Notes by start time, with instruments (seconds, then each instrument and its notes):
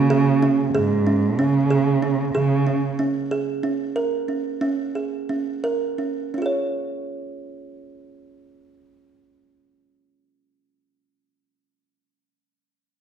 Already playing: cello C#3
0.10 kalimba G#4
0.42 kalimba C#4
0.74 cello G#2, kalimba G#4
1.07 kalimba C#4
1.39 cello C#3, kalimba C#4
1.71 kalimba G#4
2.03 kalimba C#4
2.34 cello C#3, kalimba G#4
2.67 kalimba C#4
2.99 kalimba C#4
3.31 kalimba G#4
3.63 kalimba C#4
3.96 kalimba A#4
4.28 kalimba C#4
4.61 kalimba C#4
4.95 kalimba G#4
5.29 kalimba C#4
5.64 kalimba A#4
5.98 kalimba C#4
6.34 kalimba C#4 F4
6.42 kalimba G#4 C#5